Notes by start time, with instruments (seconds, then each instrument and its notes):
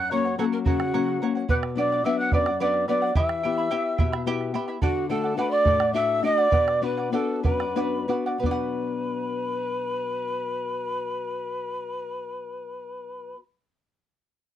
Already playing: nylon-string guitar F#2, charango C#5 F#5
0.11 nylon-string guitar F#3 A#3 C#4, charango A#4 C#5 F#5, pan flute C#5, quena C#6
0.25 charango C#5 F#5, bombo rim
0.38 nylon-string guitar F#3 A#3 C#4, pan flute A4, charango A#4 C#5 F#5, quena A5, bombo rim
0.52 pan flute A#4, quena A#5
0.65 nylon-string guitar C#3, pan flute F#4, charango A#4 C#5 F#5, quena F#5, bombo low
0.80 charango C#5 F#5, bombo rim
0.94 nylon-string guitar F#3 A#3 C#4, charango A#4 C#5 F#5
1.08 bombo rim
1.22 nylon-string guitar F#3 A#3 C#4, charango A#4 C#5 F#5
1.35 charango C#5 F#5
1.48 nylon-string guitar B2, charango B4 D5 F#5, pan flute F#5, quena F#6, bombo low
1.63 bombo rim
1.76 nylon-string guitar F#3 B3 D4, charango B4 D5 F#5, pan flute D5, quena D6
1.92 charango D5 F#5
2.04 nylon-string guitar F#3 B3 D4, charango B4 D5 F#5, pan flute E5, quena E6
2.18 pan flute F#5, quena F#6
2.31 nylon-string guitar F#2, charango B4 D5 F#5, pan flute D5, quena D6, bombo rim, bombo low
2.46 charango D5 F#5, bombo rim
2.59 nylon-string guitar F#3 B3 D4, charango B4 D5 F#5, pan flute D5, quena D6
2.74 bombo rim
2.88 nylon-string guitar F#3 B3 D4, charango B4 D5 F#5, pan flute D5, quena D6, bombo rim
3.02 charango D5 F#5, bombo rim
3.15 nylon-string guitar E3, charango E4 G4 E5 G5 B5, pan flute E5, quena E6, bombo low
3.29 bombo rim
3.43 nylon-string guitar B3 E4 G4, charango E4 E5 G5 B5
3.58 charango E4 E5 B5
3.71 nylon-string guitar B3 E4 G4, charango E4 G4 E5 G5 B5
3.98 nylon-string guitar B2, charango E4 E5 G5 B5, bombo rim, bombo low
4.12 charango E4 E5 B5, bombo rim
4.26 nylon-string guitar B3 E4 G4, charango E4 G4 E5 G5 B5
4.41 bombo rim
4.54 nylon-string guitar B3 E4 G4, charango E4 E5 G5 B5, bombo rim
4.68 charango E4 E5 B5, bombo rim
4.82 nylon-string guitar D3, pan flute F#4, charango A4 D5 F#5, quena F#5, bombo low
5.09 nylon-string guitar A3 D4 F#4, pan flute A4, charango A4 D5 F#5, quena A5
5.24 charango D5 F#5
5.36 nylon-string guitar A3 D4 F#4, charango A4 D5 F#5, pan flute B4, quena B5
5.50 pan flute D5, quena D6
5.65 nylon-string guitar A2, charango A4 D5 F#5, bombo rim, bombo low
5.80 charango D5 F#5, bombo rim
5.93 nylon-string guitar A3 D4 F#4, charango A4 D5 F#5, pan flute E5, quena E6
6.09 bombo rim
6.23 nylon-string guitar A3 D4 F#4, charango A4 D5 F#5, pan flute D5, quena D6, bombo rim
6.38 charango D5 F#5, bombo rim
6.51 nylon-string guitar B2, charango B4 D5 F#5, bombo low
6.68 bombo rim
6.82 nylon-string guitar B3 D4 F#4, charango B4 D5 F#5, pan flute B4, quena B5
6.97 charango D5 F#5, bombo rim
7.12 nylon-string guitar B3 D4 F#4, pan flute A4, charango B4 D5 F#5, quena A5
7.43 nylon-string guitar F#2, pan flute B4, charango B4 D5 F#5, quena B5, bombo low
7.60 charango D5 F#5, bombo rim
7.75 nylon-string guitar B3 D4 F#4, charango B4 D5 F#5
8.08 nylon-string guitar B3 D4 F#4, charango B4 D5 F#5
8.26 charango D5 F#5
8.38 nylon-string guitar B2 F#3, charango B4, pan flute B4
8.43 nylon-string guitar B3 D4, charango D5, quena B5, bombo low
8.48 nylon-string guitar F#4, charango F#5